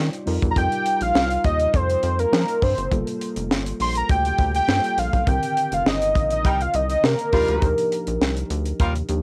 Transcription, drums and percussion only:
0.13 closed hi-hat
0.27 open hi-hat
0.43 kick, closed hi-hat
0.56 kick, closed hi-hat
0.72 closed hi-hat
0.86 closed hi-hat
1.01 closed hi-hat
1.15 snare
1.31 closed hi-hat
1.44 kick, closed hi-hat
1.60 closed hi-hat
1.74 kick, closed hi-hat
1.90 closed hi-hat
2.03 closed hi-hat
2.19 closed hi-hat
2.33 snare
2.48 closed hi-hat
2.62 kick, open hi-hat
2.78 closed hi-hat
2.92 kick, closed hi-hat
3.07 closed hi-hat
3.21 closed hi-hat
3.36 closed hi-hat
3.51 snare
3.66 closed hi-hat
3.80 open hi-hat
3.95 closed hi-hat
4.09 kick, closed hi-hat
4.25 closed hi-hat
4.38 kick, closed hi-hat
4.54 closed hi-hat
4.69 snare
4.84 closed hi-hat
4.98 closed hi-hat
5.13 kick, closed hi-hat
5.27 kick, closed hi-hat
5.43 closed hi-hat
5.57 closed hi-hat
5.72 closed hi-hat
5.86 snare
6.02 closed hi-hat
6.15 kick, closed hi-hat
6.30 closed hi-hat
6.45 kick, closed hi-hat
6.61 closed hi-hat
6.74 closed hi-hat
6.90 closed hi-hat
7.04 snare
7.19 closed hi-hat
7.33 kick, open hi-hat
7.48 closed hi-hat
7.62 kick, closed hi-hat
7.78 closed hi-hat
7.92 closed hi-hat
8.07 closed hi-hat
8.21 snare
8.37 closed hi-hat
8.50 closed hi-hat
8.65 closed hi-hat
8.80 kick, closed hi-hat
8.96 closed hi-hat
9.09 closed hi-hat

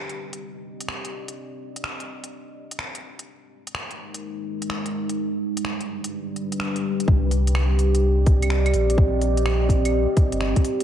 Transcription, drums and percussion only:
0.09 closed hi-hat
0.33 closed hi-hat
0.81 closed hi-hat
0.89 finger snap
1.05 closed hi-hat
1.28 closed hi-hat
1.76 closed hi-hat
1.84 finger snap
2.00 closed hi-hat
2.24 closed hi-hat
2.71 closed hi-hat
2.79 finger snap
2.95 closed hi-hat
3.19 closed hi-hat
3.67 closed hi-hat
3.75 finger snap
3.91 closed hi-hat
4.14 closed hi-hat
4.62 closed hi-hat
4.70 finger snap
4.86 closed hi-hat
5.09 closed hi-hat
5.57 closed hi-hat
5.65 finger snap
5.81 closed hi-hat
6.04 closed hi-hat
6.36 closed hi-hat
6.52 closed hi-hat
6.60 finger snap
6.76 closed hi-hat
7.00 closed hi-hat
7.08 kick
7.31 open hi-hat
7.47 closed hi-hat
7.55 finger snap, claves
7.79 open hi-hat
7.95 closed hi-hat
8.26 kick, open hi-hat
8.42 closed hi-hat, claves
8.50 finger snap
8.66 closed hi-hat, claves
8.74 open hi-hat
8.90 closed hi-hat
8.98 kick
9.21 open hi-hat
9.37 closed hi-hat
9.46 finger snap, claves
9.69 kick, open hi-hat
9.85 closed hi-hat, claves
10.17 kick, open hi-hat
10.32 closed hi-hat
10.41 finger snap
10.56 kick, closed hi-hat
10.65 open hi-hat
10.80 closed hi-hat

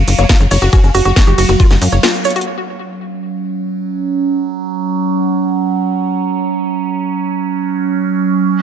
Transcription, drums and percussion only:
0.08 open hi-hat, ride, cabasa
0.18 closed hi-hat, cabasa
0.29 kick, snare, closed hi-hat, cabasa
0.40 closed hi-hat, cabasa
0.51 open hi-hat, ride, cabasa
0.62 closed hi-hat, cabasa
0.73 kick, closed hi-hat, cabasa
0.84 closed hi-hat, cabasa
0.95 open hi-hat, ride, cabasa
1.05 closed hi-hat, cabasa
1.16 kick, snare, closed hi-hat, cabasa
1.27 closed hi-hat, cabasa
1.38 open hi-hat, ride, cabasa
1.49 closed hi-hat, cabasa
1.60 kick, closed hi-hat, cabasa
1.70 snare, closed hi-hat, cabasa
1.82 open hi-hat, ride, cabasa
1.92 closed hi-hat, cabasa
2.03 snare, closed hi-hat, cabasa
2.14 closed hi-hat, cabasa
2.25 closed hi-hat, cabasa
2.30 closed hi-hat
2.36 closed hi-hat, cabasa
2.41 closed hi-hat

